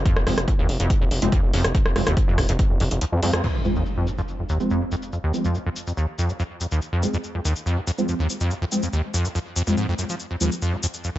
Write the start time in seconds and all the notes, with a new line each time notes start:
0.06 F2, kick, closed hi-hat
0.16 F1 G#2, cross-stick
0.27 F1 F2 F3 G#3 C4, cross-stick, open hi-hat
0.38 F1, cross-stick, closed hi-hat
0.48 F2, kick, closed hi-hat
0.59 F1 D#2
0.69 F1, open hi-hat
0.80 F1 F2, closed hi-hat
0.90 G#2, kick, closed hi-hat
1.01 F1 F2
1.11 F1, open hi-hat
1.22 F1 F2 F3 G#3 C4, closed hi-hat
1.32 D#2, kick, closed hi-hat
1.43 F1
1.53 F1 F2, open hi-hat
1.64 F1 G#2, cross-stick, closed hi-hat
1.75 F2, kick, closed hi-hat
1.86 F1, cross-stick
1.96 F1 F2 F3 G#3 C4, cross-stick, open hi-hat
2.07 F1 D#2, cross-stick, closed hi-hat
2.17 kick, closed hi-hat
2.28 F1 F2
2.38 F1 G#2, kick, cross-stick, open hi-hat
2.49 F1 F2, closed hi-hat
2.59 kick, closed hi-hat
2.70 F1 F2
2.80 F1 F2, open hi-hat
2.91 F1 F2, closed hi-hat
3.01 D#2, closed hi-hat
3.12 F2 F3
3.23 F2 F3 G#3 C4, open hi-hat
3.33 F2, cross-stick, closed hi-hat
3.44 F2, crash, impact, shaker
3.65 F2 F3 G#3 C4, shaker
3.76 D#2, shaker
3.86 shaker
3.97 F2
4.07 G#2, shaker
4.18 F2, shaker
4.28 shaker
4.39 F2
4.49 D#2, shaker
4.60 F3 G#3 C4, shaker
4.70 F2, shaker
4.81 G#2
4.92 F2, shaker
5.02 shaker
5.13 F2, shaker
5.24 D#2
5.34 F3 G#3 C4, shaker
5.45 F2, shaker
5.55 G#2, shaker
5.66 F2
5.76 shaker
5.87 F2, shaker
5.97 D#2, shaker
6.18 F2, shaker
6.29 G#2, shaker
6.40 F2, shaker
6.61 F2, shaker
6.71 D#2, shaker
6.82 shaker
6.92 F2
7.03 G#2 F3 G#3 C4, shaker
7.14 F2, shaker
7.24 shaker
7.35 F2
7.45 D#2, shaker
7.56 shaker
7.66 F2, shaker
7.77 G#2
7.87 F2, shaker
7.98 F3 G#3 C4, shaker
8.08 F2, shaker
8.19 D#2
8.30 shaker
8.40 F2, shaker
8.50 G#2, shaker
8.61 F2
8.72 F3 G#3 C4, shaker
8.83 F2, shaker
8.93 D#2, shaker
9.14 F2, shaker
9.25 G#2, shaker
9.35 F2, shaker
9.56 F2, shaker
9.67 F2 F3 G#3 C4, shaker
9.77 G#2, shaker
9.88 F2
9.99 F#2, shaker
10.09 F3, shaker
10.20 shaker
10.31 F2
10.41 D#2 F3 G#3 C4, shaker
10.52 shaker
10.62 F2, shaker
10.73 G#2
10.83 F2, shaker
10.94 shaker
11.04 F2, shaker
11.15 D#2